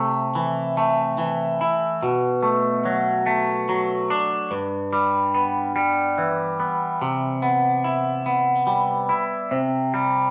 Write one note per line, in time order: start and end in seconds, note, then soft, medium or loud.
0.00 1.61 C3 medium
0.00 0.76 A3 medium
0.35 1.17 E3 medium
0.77 2.03 A3 medium
1.18 2.02 E3 medium
1.61 2.03 E4 medium
2.03 4.11 B2 medium
2.43 3.25 A3 medium
2.85 3.68 F#3 medium
3.26 4.52 A3 medium
3.69 4.53 F#3 medium
4.10 4.52 D4 medium
4.51 6.60 G2 medium
4.93 5.75 G3 medium
5.35 6.59 B3 medium
5.76 7.42 G3 medium
6.18 8.66 E3 medium
6.60 7.02 B3 medium
7.02 9.11 C3 medium
7.42 8.25 B3 medium
7.84 9.08 E4 medium
8.26 9.52 B3 medium
8.67 9.52 G3 medium
9.09 9.52 E4 medium
9.51 10.30 C3 medium
9.94 10.30 G3 medium